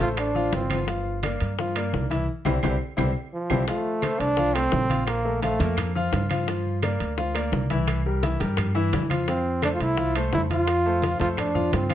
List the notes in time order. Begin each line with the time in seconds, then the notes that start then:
0.00 A1 A3 F4 A4 C5, high bongo, high conga
0.17 D4, high bongo, high timbale, claves
0.35 F3 F4 F5, high bongo, high conga
0.52 G1 C4, high bongo, low bongo, high conga, high timbale, low timbale
0.70 F3 F4 F5, high conga, high timbale, claves
0.87 F3 F4 F5, high bongo, high timbale
1.06 high conga
1.23 A#3 A#4 D5, high bongo, high conga, high timbale, claves
1.40 G2, high bongo, high timbale
1.58 F3 F4 F5, high bongo, high conga
1.75 A#3 A#4 D5, high bongo, high conga, high timbale, claves
1.93 C2, high bongo, low bongo, high conga, low timbale
2.10 E3 E4 E5, high bongo, high conga, high timbale
2.45 C2 C4 E4 G4, low bongo, high conga, high timbale, claves
2.63 C2 C4 E4 G4, low bongo, high conga, high timbale, claves
2.97 C2 C4 E4 G4, low bongo, high conga, high timbale, claves
3.34 F3
3.50 C2 C4 E4 G4, low bongo, high conga, high timbale, claves
3.68 F3 A3 F4 F5, high bongo, high timbale
3.85 high conga
4.02 A3 A4 C5, high bongo, high conga, high timbale, claves
4.19 C2 D4, high bongo, high timbale
4.37 F3 F4 F5, high bongo, high conga
4.54 A3 C4 A4 C5, high bongo, high conga, high timbale, claves
4.72 A#1, high bongo, low bongo, high conga, low timbale
4.89 F3 F4 F5, high bongo, high conga, high timbale
5.07 A#3, high bongo, high conga, high timbale, claves
5.25 A3 A4 A#4, high conga
5.42 F3 A3 F4 F5, high bongo, high conga, high timbale
5.60 F2 A#3 A4 A#4, high bongo, high conga, high timbale
5.77 high bongo, high conga, low conga, high timbale, claves
5.95 F3 F4 F5, high bongo, high conga
6.12 G2, high bongo, low bongo, high conga, high timbale, low timbale
6.30 F3 F4 F5, high conga, high timbale, claves
6.48 F3 F4 F5, high bongo, high conga, high timbale
6.65 high conga
6.82 A#3 A#4 D5, high bongo, high conga, high timbale, claves
7.00 D2, high bongo, high timbale
7.17 F3 F4 F5, high bongo, high conga
7.34 A#3 A#4 D5, high bongo, high conga, high timbale, claves
7.52 C2, high bongo, low bongo, high conga, low timbale
7.70 E3 E4 E5, high bongo, high conga, high timbale
7.87 high bongo, high conga, high timbale, claves
8.05 G3 G4 A#4, high conga
8.23 E3 E4 E5, high bongo, high conga, high timbale
8.40 G2 G3 G4 A#4, high bongo, high conga, high timbale
8.57 high bongo, high conga, low conga, high timbale, claves
8.75 E3 E4 E5, high bongo, high conga
8.93 F2, high bongo, low bongo, high conga, high timbale, low timbale
9.10 F3 F4 F5, high conga, high timbale, claves
9.28 F3 C4 F4 F5, high bongo, high timbale
9.45 high conga
9.62 A3 D4 A4 C5, high bongo, high conga, high timbale, claves
9.74 F4
9.79 C2 E4, high bongo, high conga, high timbale
9.97 F3 F4 F5, high bongo, high conga
10.15 A3 A4 C5, high bongo, high conga, high timbale, claves
10.32 F2 E4, high bongo, low bongo, high conga, low timbale
10.50 F3 F4 F5, high bongo, high conga, high timbale
10.67 high bongo, high timbale, claves
10.85 A3 A4 C5, high conga
11.02 F3 F4 F5, high bongo, high conga, high timbale
11.20 F2 A3 F4 A4 C5, high bongo, high conga, high timbale
11.37 D4, high bongo, high conga, low conga, high timbale, claves
11.54 F3 F4 F5, high bongo, high conga, low conga
11.72 G2 C4, high bongo, low bongo, high conga, high timbale, low timbale
11.89 F3 F4 F5, high conga, high timbale, claves